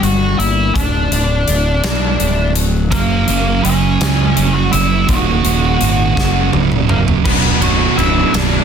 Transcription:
Already playing: G2 G3
0.02 G1 D4 F#4 F#5, closed hi-hat
0.39 G1 A#3 E4 E5, closed hi-hat
0.74 D1 D2 D4 D5, kick, closed hi-hat
1.11 D1 D3, closed hi-hat
1.48 D1 A3, closed hi-hat
1.83 B1 D4, snare, closed hi-hat
2.19 D1 A3, closed hi-hat
2.55 F#3, closed hi-hat
2.91 F#1 F#2 C#3 F#3 A#3 A#4, kick, closed hi-hat
3.28 F#1 F#2 C#3 F#3, closed hi-hat
3.64 F#1 F#2 C#3 F#3 C#4 C#5, closed hi-hat
4.00 C#2 F#2 C#3 F#3, snare, closed hi-hat
4.36 F#1 F#2 C#3 F#3, closed hi-hat
4.54 F#4 F#5
4.72 F#1 F#2 C#3 F#3 E4 E5, closed hi-hat
5.07 D#1 D#2 A#2 D#3 F#4 F#5, kick, closed hi-hat
5.44 D#1 D#2 A#2 D#3, closed hi-hat
5.80 G#1 D#2 A#2 D#3, closed hi-hat
6.16 F#1 F#2 C#3 F#3, kick, snare
6.52 C#1 F#2 C#3 F#3, high tom
6.72 mid tom
6.88 F#2 C#3 F#3 A#3 A#4, mid tom
7.08 floor tom
7.24 B0 B1 F#2 B2 F#3 B3 D4 B4, kick, crash
7.60 B0 B2 F#3 D4 F#4 F#5, ride
7.97 B0 F#2 B2 F#3 D4 E4 E5, ride
8.32 B0 B1 F#2 B2 F#3 D4 D5, snare, ride

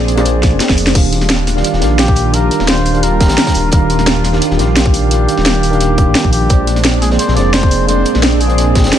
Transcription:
Already playing: A#1 A#3 C4 D4 G#4 C5 D5
0.08 closed hi-hat
0.15 A#3 G#4 C5, closed hi-hat, high bongo
0.20 D5
0.25 closed hi-hat
0.43 kick, snare, closed hi-hat
0.52 F1
0.60 snare, closed hi-hat
0.69 F1, kick, snare
0.78 closed hi-hat, open hi-hat
0.87 snare, closed hi-hat
0.93 D#1 D#3 G3 D4 F4 G4, kick, closed hi-hat, crash
0.98 F5
1.13 closed hi-hat
1.21 snare, closed hi-hat
1.30 snare, closed hi-hat
1.39 closed hi-hat
1.47 snare, closed hi-hat, open hi-hat
1.55 D#3 D4 G4 F5, snare
1.64 closed hi-hat
1.73 D#1, snare
1.79 A#1 D#3 D4 G4, snare, closed hi-hat
1.84 F5
1.99 G4, snare, closed hi-hat
2.08 kick, closed hi-hat
2.16 closed hi-hat, open hi-hat
2.32 D#3 D4 G4 A#4, closed hi-hat
2.36 F5
2.51 closed hi-hat
2.60 D#1, snare
2.68 C5, snare, closed hi-hat
2.77 closed hi-hat
2.85 closed hi-hat, open hi-hat
2.92 D#3 D4 G4, closed hi-hat
2.97 F5
3.03 A#4, closed hi-hat
3.20 kick, snare, closed hi-hat
3.28 A#1, snare, closed hi-hat
3.37 snare, closed hi-hat
3.47 kick, snare, closed hi-hat
3.54 D#1, closed hi-hat, open hi-hat
3.70 D#1 D#3 D4 G4 A#4, kick, closed hi-hat
3.75 F5
3.90 closed hi-hat
3.99 snare, closed hi-hat
4.07 snare, closed hi-hat
4.16 closed hi-hat
4.24 snare, closed hi-hat, open hi-hat
4.32 D#3 D4 G4 F5, snare
4.42 closed hi-hat
4.51 D#1, snare
4.57 A#1 D#3 D4 G4, snare, closed hi-hat
4.61 F5
4.77 G4, snare, closed hi-hat
4.86 kick, closed hi-hat
4.94 closed hi-hat, open hi-hat
5.09 D#3 D4 G4, closed hi-hat
5.13 F5
5.29 closed hi-hat
5.38 D#1, snare
5.46 snare, closed hi-hat
5.55 closed hi-hat
5.63 closed hi-hat, open hi-hat
5.70 D#3 D4 G4, closed hi-hat
5.75 F5
5.80 closed hi-hat
5.98 kick, closed hi-hat
6.07 A#1
6.15 snare, closed hi-hat
6.24 A#1, kick, closed hi-hat
6.33 G4, closed hi-hat, open hi-hat
6.48 A#1 G#3 A#3 C4 C5, kick, closed hi-hat
6.53 D5
6.67 closed hi-hat
6.76 snare, closed hi-hat
6.85 snare, closed hi-hat
6.94 closed hi-hat
7.02 G#4, snare, closed hi-hat, open hi-hat
7.10 A#3 G#4 C5 D5, snare
7.19 C5, closed hi-hat
7.28 A#1, snare
7.34 F1 A#3 G#4 C5 D5, snare, closed hi-hat
7.39 D5
7.54 C5, snare, closed hi-hat
7.63 kick, closed hi-hat
7.71 closed hi-hat, open hi-hat
7.86 A#3 G#4 C5, closed hi-hat
7.91 D5
8.05 closed hi-hat
8.14 A#1, snare
8.23 snare, closed hi-hat
8.32 closed hi-hat
8.40 G#4, closed hi-hat, open hi-hat
8.47 A#3 G#4 C5, closed hi-hat
8.52 D5
8.58 closed hi-hat
8.75 kick, snare, closed hi-hat
8.84 F1, snare, closed hi-hat
8.92 snare, closed hi-hat

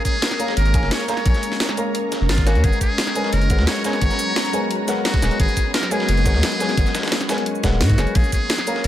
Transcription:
Already playing: G#3 A#3 C#4 A#4 C#5 F5 G#5 A#5
0.05 G#4, kick, closed hi-hat, shaker
0.22 snare, closed hi-hat
0.31 snare, closed hi-hat, shaker
0.39 A#3 A#4 C#5 F5 A#5, closed hi-hat, open hi-hat, shaker
0.48 snare
0.57 G#1 A#4, closed hi-hat
0.66 closed hi-hat
0.74 A#1 A#3 A#4 C#5 F5 G#5, kick, closed hi-hat, shaker
0.82 F1, snare
0.91 C#5, snare, closed hi-hat
1.00 closed hi-hat
1.08 A#3 A#4 C#5 F5 A#5, snare, closed hi-hat, open hi-hat, shaker
1.17 snare, closed hi-hat
1.25 A#1 A#3 A#4 C#5 G#5, kick, closed hi-hat
1.34 snare, shaker
1.43 closed hi-hat, shaker
1.52 snare
1.60 snare, closed hi-hat
1.69 snare, closed hi-hat, shaker
1.77 A#3 A#4 C#5 F5 A#5, closed hi-hat, open hi-hat, shaker
1.95 closed hi-hat
2.12 snare, closed hi-hat, shaker
2.21 F1
2.29 G#1 F4, snare, closed hi-hat
2.38 kick, snare, closed hi-hat
2.46 A#3 F#4 A#4 C#5 F5 G#5, snare, closed hi-hat, open hi-hat, shaker
2.55 D#2, closed hi-hat
2.63 G#1 F#3 G#3 B3 G#4 F#5 A#5, kick, closed hi-hat
2.73 shaker
2.81 G#4, kick, closed hi-hat, shaker
2.98 snare, closed hi-hat
3.07 snare, closed hi-hat, shaker
3.15 G#3 G#4 A#4 B4 C#5 G#5, closed hi-hat, open hi-hat, shaker
3.24 snare
3.33 F#1 A#4, closed hi-hat
3.42 closed hi-hat
3.50 G#1 G#3 G#4 A#4 B4 C#5 F#5, kick, closed hi-hat, shaker
3.59 D#2, snare
3.67 C#5, snare, closed hi-hat
3.76 closed hi-hat
3.84 G#3 G#4 A#4 B4 C#5 G#5, snare, closed hi-hat, open hi-hat, shaker
3.93 snare, closed hi-hat
4.00 G#1 G#3 G#4 A#4 B4 F#5, kick, closed hi-hat
4.10 snare, shaker
4.19 closed hi-hat, shaker
4.36 snare, closed hi-hat
4.45 closed hi-hat, shaker
4.53 G#3 G#4 A#4 B4 C#5 G#5, closed hi-hat, open hi-hat, shaker
4.71 closed hi-hat
4.87 G#3 G#4 A#4 B4 C#5 F#5, snare, closed hi-hat, shaker
5.05 F#4, snare, closed hi-hat
5.14 kick, snare, closed hi-hat
5.21 D#1 G#3 G#4 A#4 B4 C#5 G#5, snare, closed hi-hat, open hi-hat, shaker
5.31 closed hi-hat
5.38 G#1 G#3 G#4 F#5, kick, closed hi-hat
5.48 shaker
5.57 kick, closed hi-hat, shaker
5.74 A#4, snare, closed hi-hat
5.83 snare, closed hi-hat, shaker
5.91 G#3 G#4 A#4 B4 C#5 G#5, closed hi-hat, open hi-hat, shaker
6.00 snare
6.08 F#1, closed hi-hat
6.17 closed hi-hat
6.25 G#1 G#3 G#4 A#4 B4 C#5 F#5, kick, closed hi-hat, shaker
6.34 D#2, snare
6.43 snare, closed hi-hat
6.52 closed hi-hat
6.60 G#3 G#4 A#4 B4 C#5 G#5, snare, closed hi-hat, open hi-hat, shaker
6.69 snare, closed hi-hat
6.77 G#1 A#4 B4 C#5 F#5, kick, closed hi-hat
6.86 snare, shaker
6.95 snare, closed hi-hat, shaker
7.03 snare, closed hi-hat
7.08 snare, closed hi-hat
7.12 snare, closed hi-hat
7.21 snare, closed hi-hat, shaker
7.29 G#3 G#4 A#4 B4 C#5 G#5, snare, closed hi-hat, open hi-hat, shaker
7.38 closed hi-hat
7.46 closed hi-hat
7.55 shaker
7.63 D#1 G#3 G#4 A#4 B4 C#5 F#5, kick, snare, closed hi-hat, shaker
7.81 G#2 F#4, snare, closed hi-hat
7.89 kick, snare, closed hi-hat, shaker
7.98 F#1 G#3 G#4 A#4 B4 C#5 G#5, snare, closed hi-hat, open hi-hat, shaker
8.07 closed hi-hat
8.14 A#1 G#3 A#3 C#4 G#4 A#4 A#5, kick, closed hi-hat, ride
8.24 shaker
8.32 G#4, kick, closed hi-hat, shaker
8.50 snare, closed hi-hat, ride
8.58 snare, closed hi-hat, shaker
8.67 A#3 A#4 C#5 F5 A#5, closed hi-hat, open hi-hat, shaker
8.76 snare
8.84 G#1, closed hi-hat, ride

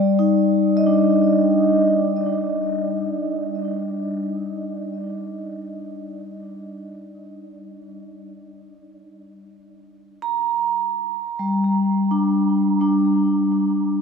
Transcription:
Already playing: G3 D5
0.19 D#4
0.77 D#5
0.86 D4
10.22 A#5
11.39 G3
12.11 D4
12.81 D4

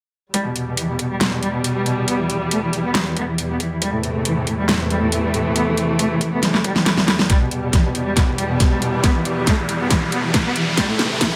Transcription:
0.34 E2 B2 G3, kick, closed hi-hat
0.45 B2
0.56 B2, closed hi-hat
0.67 B2
0.77 E3, closed hi-hat
0.89 B2
0.99 B2, kick, closed hi-hat
1.11 G3
1.21 B2, snare, closed hi-hat
1.32 B2
1.43 G3, closed hi-hat
1.54 B2
1.64 B2, closed hi-hat
1.76 G3
1.86 B2, closed hi-hat
1.98 B2
2.08 B3, closed hi-hat
2.19 E3
2.30 E3, closed hi-hat
2.41 E3
2.51 A3, closed hi-hat
2.63 E3
2.73 E3, closed hi-hat
2.84 B3
2.95 E3, snare, closed hi-hat
3.06 E3
3.17 B3, kick, closed hi-hat
3.28 E3
3.38 E3, closed hi-hat
3.50 B3
3.60 E3, kick, closed hi-hat
3.72 E3
3.82 C3 E3 G3 A3, kick, closed hi-hat
3.93 A2
4.03 A2, closed hi-hat
4.15 A2
4.25 E3, closed hi-hat
4.37 A2
4.47 A2, kick, closed hi-hat
4.58 G3
4.69 A2, snare, closed hi-hat
4.80 A2
4.90 G3, closed hi-hat
5.02 A2
5.12 A2, closed hi-hat
5.24 G3
5.34 A2, closed hi-hat
5.46 A2
5.56 B3, closed hi-hat
5.67 E3
5.77 E3, closed hi-hat
5.89 E3
5.99 A3, closed hi-hat
6.11 E3
6.21 E3, kick, closed hi-hat
6.32 B3
6.43 E3, snare, closed hi-hat
6.54 E3, snare
6.64 G3, kick, closed hi-hat
6.76 E3, snare
6.86 E3, snare, closed hi-hat
6.97 E3, snare
7.08 E3, snare, closed hi-hat
7.19 E3, snare
7.30 E2 B2 G3, kick, snare, closed hi-hat, riser
7.41 B2
7.51 B2, closed hi-hat
7.63 B2
7.73 E3, kick, snare, closed hi-hat
7.84 B2
7.95 B2, closed hi-hat
8.06 G3
8.17 B2, kick, snare, closed hi-hat
8.28 B2
8.38 G3, closed hi-hat
8.49 B2
8.60 B2, kick, snare, closed hi-hat
8.71 G3
8.82 B2, closed hi-hat
8.93 B2
9.03 B3, kick, snare, closed hi-hat
9.15 E3
9.25 E3, closed hi-hat
9.36 E3
9.47 A3, kick, snare, closed hi-hat
9.58 E3
9.69 E3, closed hi-hat
9.80 B3
9.90 E3, kick, snare, closed hi-hat
10.02 E3
10.12 B3, closed hi-hat
10.24 E3
10.34 E3, kick, snare, closed hi-hat
10.45 B3
10.56 E3, closed hi-hat
10.67 E3
10.77 E2 C3 E3 G3 A3, kick, snare, closed hi-hat
10.89 A2
10.99 A2, snare, closed hi-hat
11.10 A2
11.21 E3, kick, snare, closed hi-hat
11.32 A2

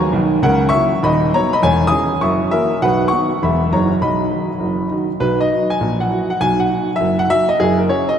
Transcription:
Already playing: C#5
0.12 B1 D#3
0.42 C#2 C#3 A#4 F#5
0.69 E5 C#6
0.73 F#3 A#3 E4
1.03 D#1 D#2 D#5 B5
1.34 F#3 B3 D#4 C#5 A#5
1.53 D#5 B5
1.62 E1 E2 C#5 G#5
1.87 G#5 D#6
1.91 E3 C#4 G#4
2.21 F#1 F#2 E5 C#6
2.51 E3 A#3 F#4 A#4 E5
2.82 B1 B2 B4 F#5
3.08 F#5 C#6
3.12 D#3 B3 F#4
3.42 E1 E2 E3 B3 G#4 E5 B5
3.72 F#1 F#2 E3 D#4 G#4 C#5 A#5
4.01 B1 B2 D#5 B5
4.31 D#3 D#4 F#4
4.60 F#1 F#2
4.91 D#3 D#4 F#4
5.20 B1 B2 B4
5.41 D#5
5.52 F#3 D#4 F#4
5.70 G#5
5.80 A#1 A#2
6.00 F#5
6.10 F#3 E4 F#4
6.30 F#5
6.40 B1 B2 G#5
6.60 F#5
6.70 F#3 D#4 F#4
6.96 F#1 F#2 E5
7.19 F#5
7.30 F#3 D#4 F#4 E5
7.49 D#5
7.59 F#1 F#2 G#4
7.78 A#4
7.89 F#3 C#4 F#4 C#5
8.09 D#5

